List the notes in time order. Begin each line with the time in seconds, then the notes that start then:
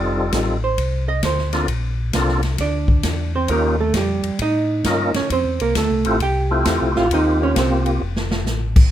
Already playing: F1 G3 C4 D#4 F4 A4 D5
0.32 A1, kick, snare, hi-hat pedal, ride
0.64 C5
0.78 C2, kick, ride
1.08 D#5
1.22 D2 C5, kick, snare, hi-hat pedal, ride
1.38 snare
1.53 A#3 C4 D4 F4 A4, snare, ride
1.68 A#1, kick, ride
2.13 C2 A#3 C4 D4 F4 A4, kick, snare, hi-hat pedal, ride
2.28 snare
2.43 snare, ride
2.58 D2 D4 D5, kick, snare, ride
2.88 kick
3.03 E2, kick, snare, hi-hat pedal, ride
3.35 C4 C5
3.48 D#2 A#3 C#4 D#4 F4 G4 A#4, kick, ride
3.80 A3 A4
3.93 F2 G3 G4, kick, snare, hi-hat pedal, ride
4.23 F2, ride
4.39 A2 D#4 D#5, kick, ride
4.84 G2 A#3 C#4 D#4 F4 A#4, kick, snare, hi-hat pedal, ride
5.14 G2 C#4 C#5, snare, ride
5.29 F2 C4 C5, kick, ride
5.45 E2
5.60 C2 A#3 A#4, ride
5.75 D2 A3 A4, kick, snare, hi-hat pedal, ride
5.90 C2
6.05 A1 A3 C4 E4 F4 G4, ride
6.20 C2 G4 G5, kick, ride
6.51 A3 C4 E4 F4 G4
6.65 E2, kick, snare, hi-hat pedal, ride
6.81 C2
6.96 A1 F4 F5, snare
7.11 D#2 A#3 C4 D#4 F4 G4 D#5, kick, ride
7.43 C#4 C#5
7.56 C2 C4 C5, kick, snare, hi-hat pedal, ride
7.86 ride
8.02 F1
8.16 snare
8.31 snare
8.46 A1, snare, hi-hat pedal
8.76 kick, crash